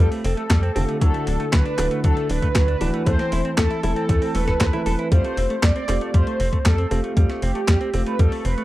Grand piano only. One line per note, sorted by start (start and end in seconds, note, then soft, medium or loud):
0.00 0.73 A3 medium
0.00 0.73 C4 medium
0.00 0.73 F4 medium
0.00 0.73 G4 medium
0.76 0.98 D3 loud
0.76 0.98 A3 medium
0.76 0.98 C4 medium
0.76 0.98 F4 medium
0.76 0.98 G4 loud
1.01 1.75 D3 medium
1.01 1.75 A3 medium
1.01 1.75 D4 medium
1.01 1.75 E4 medium
1.01 1.75 F#4 medium
1.78 2.78 D3 medium
1.78 2.78 A3 medium
1.78 2.78 D4 medium
1.78 2.78 E4 medium
1.78 2.78 F#4 loud
2.81 3.03 E3 loud
2.81 3.03 A3 medium
2.81 3.04 D4 medium
2.81 3.03 E4 medium
2.81 3.03 F#4 loud
3.06 3.80 E3 medium
3.06 3.80 A3 medium
3.06 3.80 C4 medium
3.06 3.80 E4 medium
3.06 3.80 A4 medium
3.83 4.71 E3 medium
3.83 4.71 A3 medium
3.83 4.71 C4 medium
3.83 4.71 E4 medium
3.83 4.71 A4 loud
4.73 5.09 E3 medium
4.73 5.09 A3 medium
4.73 5.09 C4 medium
4.73 5.09 E4 medium
4.73 5.09 A4 medium
5.12 5.86 A3 medium
5.12 5.86 C4 medium
5.12 5.86 F4 medium
5.12 5.86 G4 medium
5.89 6.88 A3 medium
5.89 6.88 C4 medium
5.89 6.88 F4 medium
5.89 6.88 G4 medium
6.91 7.14 A3 loud
6.91 7.14 C4 medium
6.91 7.14 F4 medium
6.91 7.14 G4 loud
7.17 7.91 A3 medium
7.17 7.91 C4 medium
7.17 7.91 F4 medium
7.17 7.91 G4 medium
7.94 8.64 A3 medium
7.94 8.64 C4 medium
7.94 8.64 F4 medium
7.94 8.64 G4 loud